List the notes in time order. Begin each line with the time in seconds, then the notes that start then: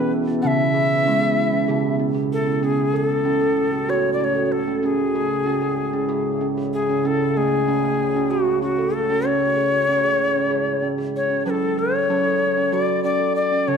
Already playing: B2 E3 B3 E4 G#4 B4
0.27 C#4
0.42 C#3 C#4 F#5
0.47 E5
0.74 G#4
1.05 G#3 C#4
1.21 G#4
1.52 C#4
1.68 C#3 G#4
1.99 C#4
2.14 G#4
2.33 A4
2.47 C#4
2.63 C#3 A3 C#4 F#4 G#4
2.94 A4
3.25 C#4
3.41 A4
3.73 C#4
3.89 F#4 C#5
4.13 D5
4.20 C#4 C#5 D5
4.36 A4
4.45 C#5
4.53 A4
4.68 C#4
4.83 C#3 G#3 C#4 E4 G#4
5.15 G#4
5.46 C#4
5.62 G#4
5.93 C#4
6.09 G#4
6.41 C#4
6.58 G#4
6.73 G#4
6.89 C#4
7.05 A3 C#4 F#4 A4
7.37 A3 G#4
7.68 C#4
7.84 A3
8.16 C#4
8.31 F#4
8.62 C#4 F#4
8.78 A4
8.94 A4
9.10 C#4
9.25 G#3 C#4 E4 C#5
9.57 G#4
9.89 C#4
10.03 G#4
10.35 C#4
10.51 G#4
10.82 C#4
10.98 G#4
11.16 C#5
11.30 C#4
11.46 F#3 C#4 B4
11.50 A4
11.78 A4 C#5
12.10 F#3 C#4
12.26 A4
12.57 C#4
12.72 F#3 F#4 D5
13.04 C#4 D5
13.20 A4
13.36 D5
13.52 C#4
13.68 C#3 C#4 C#5